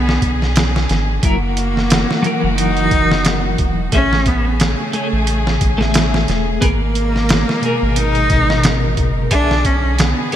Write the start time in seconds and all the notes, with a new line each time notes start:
Already playing: B1 B2 D3 B3 G#4
0.09 snare
0.22 B1, kick, closed hi-hat
0.42 snare
0.56 snare, closed hi-hat
0.76 snare
0.89 G#1, snare, closed hi-hat
1.22 F#1 E3 F#3 A#3 E4 F#4 A#4, kick, closed hi-hat
1.57 closed hi-hat
1.77 snare
1.90 snare, closed hi-hat
2.11 snare
2.22 E3 F#3, closed hi-hat
2.27 A#4
2.43 F#1
2.58 D#4, closed hi-hat
2.77 closed hi-hat
2.91 F#1, kick, closed hi-hat
3.11 snare
3.25 snare, closed hi-hat
3.58 E1, kick, closed hi-hat
3.92 A1 C#3 A3 C#4 G#4 E5, kick, closed hi-hat
4.13 snare
4.26 B3, kick, closed hi-hat
4.60 A3, snare, closed hi-hat
4.93 A3 G#4 C#5, closed hi-hat
5.13 A1
5.27 closed hi-hat
5.47 snare
5.61 A1, kick, closed hi-hat
5.78 A3 G#4, snare
5.83 E5
5.94 snare, closed hi-hat
6.14 snare
6.28 E1, snare, closed hi-hat
6.61 G#1 B2 G#3 A#3 B3 G#4 A#4, kick, closed hi-hat
6.95 closed hi-hat
7.16 snare
7.29 snare, closed hi-hat
7.49 snare
7.62 B2 G#4, closed hi-hat
7.66 A#4
7.82 G#1
7.96 D#4, closed hi-hat
8.15 closed hi-hat
8.30 G#1, kick, closed hi-hat
8.50 snare
8.63 snare, closed hi-hat
8.97 F#1, kick, closed hi-hat
9.31 B1 D3 B3 D4 G#4 E5, kick, closed hi-hat
9.51 snare
9.65 C#4, kick, closed hi-hat
9.99 B3, snare, closed hi-hat
10.32 B3, closed hi-hat